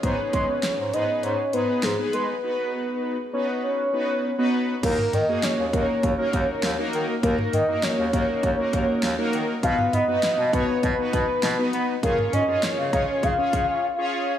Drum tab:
CC |----------------|----------------|x---------------|----------------|
HH |x-x-x-x-x-x-x-x-|----------------|x-x-x-x-x-x-x-x-|x-x-x-x-x-x-x-x-|
CB |----------------|----------------|----------------|----------------|
SD |----o-------o---|----------------|----o-------o---|----o-------o---|
T2 |----------------|----------------|-oo-------------|-oo-------------|
BD |o-o-------------|----------------|o-----o-o-o-----|o-----o-o-o-----|

CC |----------------|----------------|
HH |x-x-x-x-x-x-x-x-|x-x-x-x-x-x-----|
CB |----------------|------x---------|
SD |----o-------o---|----o-----------|
T2 |-oo-------------|-oo-------------|
BD |o-----o-o-o-----|o-----o-o-o-----|